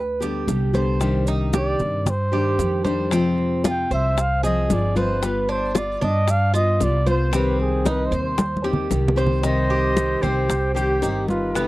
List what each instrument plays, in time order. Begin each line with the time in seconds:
Already playing: upright bass D2, cuban tres B4
0.20 nylon-string guitar D3 G3 B3 G4, cuban tres G4, high bongo, high conga, maracas
0.47 upright bass C2, nylon-string guitar D3 G3 B3 G4, high bongo, low bongo, high conga, maracas
0.73 nylon-string guitar D3 G3 B3 G4, cuban tres C5, high bongo, high conga, maracas
1.00 nylon-string guitar C3 D#3 G3 D4 G4, high bongo, high conga, maracas
1.27 cuban tres D#4, high conga, maracas
1.53 cuban tres G4, trumpet D5, high bongo, high conga, maracas
1.79 upright bass G2, high bongo, high conga, low conga, maracas
2.06 trumpet C5, muted nylon-string guitar stroke, high bongo, high conga, low conga, maracas
2.32 nylon-string guitar D#3 G3 D4 G4, cuban tres G4, high bongo, high conga
2.58 upright bass F2, nylon-string guitar D#3 G3 D4 G4, high bongo, low bongo, high conga, maracas
2.85 nylon-string guitar D#3 G3 D4 G4, cuban tres C5, high bongo, high conga, maracas
3.11 nylon-string guitar C3 F3 G#3 C4 F4, cuban tres C4, high bongo, high conga, maracas
3.38 high conga
3.64 cuban tres F4, trumpet G5, high bongo, high conga, maracas
3.91 upright bass C2, cuban tres C5, trumpet E5, high bongo, maracas
4.17 muted nylon-string guitar stroke, high bongo, high conga, maracas
4.21 trumpet F5
4.43 nylon-string guitar F3 G#3 C4 F4, cuban tres G#4, trumpet D#5, high bongo, high conga, maracas
4.70 upright bass G1, nylon-string guitar F3 G#3 C4 F4, trumpet D5, high bongo, low bongo, high conga, maracas
4.96 nylon-string guitar F3 G#3 C4 F4, cuban tres B4, trumpet C5, high bongo, high conga, maracas
5.22 nylon-string guitar G3 B3 F4, trumpet B4, high bongo, high conga, maracas
5.49 cuban tres D4, trumpet C5, high conga
5.75 cuban tres F4, trumpet D5, high bongo, high conga, maracas
6.01 upright bass G2, cuban tres D4, trumpet D#5, high bongo, high conga, low conga, maracas
6.27 trumpet F5, muted nylon-string guitar stroke, high bongo, high conga, maracas
6.54 nylon-string guitar B3 F4, cuban tres F4, trumpet D#5, high bongo, high conga, maracas
6.80 upright bass C2, nylon-string guitar G3 B3 F4, trumpet D5, high bongo, low bongo, high conga, maracas
7.06 nylon-string guitar B3 F4, cuban tres C5, trumpet C5, high bongo, high conga, maracas
7.32 nylon-string guitar C3 D#3 G3 C4 G4, cuban tres C4, high bongo, high conga, maracas
7.36 trumpet B4
7.60 trumpet G#4, high conga
7.85 cuban tres D#4, trumpet B4, high bongo, high conga, maracas
8.06 trumpet C5
8.11 upright bass D#2, cuban tres C5, high bongo, maracas
8.23 trumpet C5
8.37 muted nylon-string guitar stroke, high bongo, high conga, maracas
8.57 high conga
8.64 nylon-string guitar D#3 G3 C4 G4, cuban tres G4, high bongo
8.73 low conga
8.90 upright bass C2, nylon-string guitar D#3 G3 C4 G4, high bongo, low bongo, maracas
9.08 low conga
9.16 nylon-string guitar D#3 G3 C4 G4, cuban tres C5, high bongo, maracas
9.27 low conga
9.43 nylon-string guitar C3 D#3 G3 C4 G4, cuban tres D#4, trumpet C5, flute D#5, high bongo, high conga, maracas
9.70 cuban tres G4, high conga
9.96 nylon-string guitar D#3 G3 C4 G4, high bongo, high conga, maracas
10.22 upright bass C2, nylon-string guitar D#3 G3 C4 G4, cuban tres C4, trumpet G4, flute C5, high bongo, high conga, low conga, maracas
10.48 muted nylon-string guitar stroke, high bongo, high conga, low conga, maracas
10.74 nylon-string guitar D#3 G3 C4 G4, trumpet G4, cuban tres G4, flute C5, high bongo, high conga, maracas
11.01 upright bass G1, nylon-string guitar D#3 G3 C4 G4, cuban tres D#4, high bongo, low bongo, high conga, maracas
11.28 trumpet F4, flute B4, high bongo, high conga, maracas
11.55 nylon-string guitar B2 D3 G3 B3 G4, cuban tres B3, high bongo, high conga, maracas